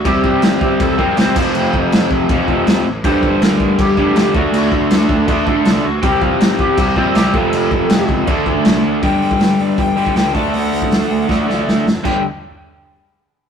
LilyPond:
<<
  \new Staff \with { instrumentName = "Lead electric guitar" } { \time 4/4 \key d \phrygian \tempo 4 = 160 g'4 ees'8 g'8 a'8 bes'8 c''8 c''8~ | c''4. r2 r8 | c''4 bes'4 g'4. fis'8 | fis'4 d'4 d'4 d'8 fis'8 |
g'8 f'8 ees'8 g'8 g'8 f'8 g'8 a'8~ | a'4. r2 r8 | g''4. d''8 g''4 g''8 a''8 | fis''2. r4 |
g''8 r2. r8 | }
  \new Staff \with { instrumentName = "Overdriven electric guitar" } { \clef bass \time 4/4 \key d \phrygian <c g c'>2~ <c g c'>8 <c g c'>8 <c g c'>8 <f, c f>8~ | <f, c f>2 <f, c f>8 <f, c f>4 r8 | <g, d g>2~ <g, d g>8 <g, d g>8 <g, d g>8 <d a d'>8~ | <d a d'>2 <d a d'>8 <d a d'>4 r8 |
<c g c'>2~ <c g c'>8 <c g c'>8 <c g c'>8 <f, c f>8~ | <f, c f>2 <d a d'>2 | <g, d g>2~ <g, d g>8 <g, d g>8 <g, d g>8 <d a d'>8~ | <d a d'>2 <d a d'>8 <d a d'>4 r8 |
<g, d g>8 r2. r8 | }
  \new Staff \with { instrumentName = "Picked electric bass" } { \clef bass \time 4/4 \key d \phrygian c,8 c,8 g,,4 c,8 bes,,8 c,8 f,,8 | f,,8 f,,8 f,,8 f,,8 f,,8 f,,8 ees,8 a,,8 | g,,8 g,,8 d,4 g,,8 f,,8 g,,8 d,8 | d,8 d,8 d,8 d,8 d,8 d,8 c,8 d,8 |
c,8 c,8 g,,4 c,8 bes,,8 c,8 f,,8 | f,,8 f,,8 f,,8 cis,8 d,8 d,8 c,8 d,8 | g,,8 g,,8 g,,8 g,,8 g,,8 g,,8 cis,8 d,8 | d,8 d,8 d,8 d,8 d,8 d,8 d,8 fis,,8 |
g,,8 r2. r8 | }
  \new DrumStaff \with { instrumentName = "Drums" } \drummode { \time 4/4 <cymc bd>8 bd8 <cymc sn>8 bd8 <cymc bd>8 bd8 <cymc sn>8 <cymc bd>8 | cymc8 bd8 <cymc sn>8 bd8 <cymc bd>8 bd8 <cymc sn>4 | <cymc bd>8 bd8 <cymc sn>8 bd8 <cymc bd>8 bd8 <cymc sn>8 bd8 | cymc8 bd8 <cymc sn>8 bd8 <cymc bd>8 bd8 <cymc sn>4 |
<cymc bd>8 bd8 <cymc sn>8 bd8 <cymc bd>8 bd8 <cymc sn>8 bd8 | cymc8 bd8 <cymc sn>8 bd8 <cymc bd>8 bd8 <cymc sn>4 | <hho bd>8 hho16 bd16 <hho sn>8 hho8 <hho bd>8 hho16 bd16 <hho sn>8 <hho bd>8 | hho8 hho16 bd16 <hho sn>8 hho8 <bd sn>8 sn8 sn8 sn8 |
<cymc bd>4 r4 r4 r4 | }
>>